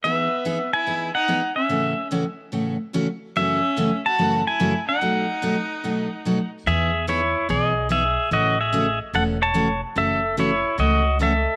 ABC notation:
X:1
M:4/4
L:1/8
Q:"Swing" 1/4=145
K:E
V:1 name="Pedal steel guitar"
e3 g2 f2 e- | e2 z6 | e3 a2 g2 f- | f6- f z |
[Ge]2 [Ec]2 [Gd]2 [Ge]2 | [Fd] [Ge]2 z [Af] [ca]2 z | [Ae]2 [Ec]2 [Fd]2 [Ae]2 |]
V:2 name="Fiddle"
B,3 E2 D2 C- | C2 z6 | C3 F2 E2 D- | D6- D z |
z8 | z8 | z8 |]
V:3 name="Steel-string acoustic guitar"
[E,B,DG] z [E,B,DG] z [E,B,DG] z [E,B,DG] z | [A,,C,E,A,CF] z [A,,C,E,A,CF] z [A,,C,E,A,CF] z [A,,C,E,A,CF] z | [F,,C,E,A,CF] z [F,,C,E,A,CF] z [F,,C,E,A,CF] z [F,,C,E,A,CF] z | [B,,F,A,DF] z [B,,F,A,DF] z [B,,F,A,DF] z [B,,F,A,DF] z |
[E,B,DG] z [E,B,DG] z [E,B,DG] z [E,B,DG] z | [C,E,A,CF] z [C,E,A,CF] z [C,E,A,CF] z [C,E,A,CF] z | [C,E,A,CF] z [C,E,A,CF] z [C,E,A,CF] z [C,E,A,CF] z |]
V:4 name="Upright bass" clef=bass
z8 | z8 | z8 | z8 |
E,,4 B,,,4 | A,,,4 E,,,4 | F,,,4 C,,4 |]